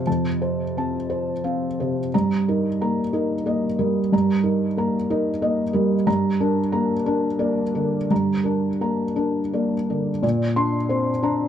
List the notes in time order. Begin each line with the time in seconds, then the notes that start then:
Already playing: C3 C5
0.07 F2 A5
0.42 C5
0.77 C4 A5
1.10 C5
1.44 C4 F5
1.80 C3 C5
2.14 G2 A#5
2.48 D#4 A#4
2.81 A#3 A#5
3.13 D#4 A#4
3.46 A#3 D#5
3.79 G3 A#4
4.12 G2 A#5
4.44 D#4 A#4
4.77 A#3 A#5
5.10 D#4 A#4
5.42 A#3 D#5
5.73 G3 A#4
6.07 G2 A#5
6.40 D4 A#4
6.72 A#3 A#5
7.06 D4 A#4
7.39 A#3 D5
7.75 D3 A#4
8.11 G2 A#5
8.44 D4 A#4
8.81 A#3 A#5
9.16 D4 A#4
9.53 A#3 D5
9.90 D3 A#4
10.23 A#2 D5
10.56 D4 C6
10.89 C4 C5
11.23 D4 A#5